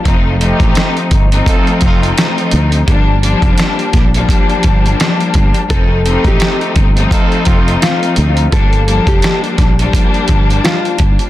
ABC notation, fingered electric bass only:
X:1
M:4/4
L:1/16
Q:"Swing 16ths" 1/4=85
K:Gm
V:1 name="Fingered electric bass" clef=bass
F,,,3 A,,, z2 G,,,2 z2 F,,,2 z2 D,,2 | G,,,3 F,,, z2 B,,,2 z2 G,,,2 z2 G,,, z | F,,,3 A,,, z2 G,,,2 z2 F,,,2 z2 D,,2 | G,,,3 F,,, z2 B,,,2 z2 G,,,2 z2 G,,, z |]